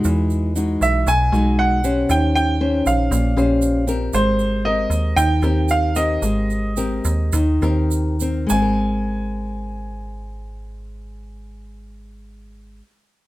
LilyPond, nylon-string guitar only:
\new Staff \with { instrumentName = "Nylon-string guitar" } { \time 4/4 \key aes \major \tempo 4 = 112 << { <aes dis' fis'>4 <gis dis' fis'>4 r8 <gis dis' fis'>4 <des' g' c''>8~ | <des' g' c''>4 <des' g' c''>4. <des' g' c''>4 <c' g' bes'>8~ | <c' g' bes'>4 <c' g' bes'>4. <c' g' bes'>4 <c' g' bes'>8~ | <c' g' bes'>4 <c' g' bes'>4 r8 <c' g' bes'>4 <c' bes'>8~ |
<c' bes'>4 r2. | r1 | } \\ { e2 b,2 | ees2 bes,2 | aes2 ees2 | aes2 ees2 |
<aes c' bes'>1~ | <aes c' bes'>1 | } >> }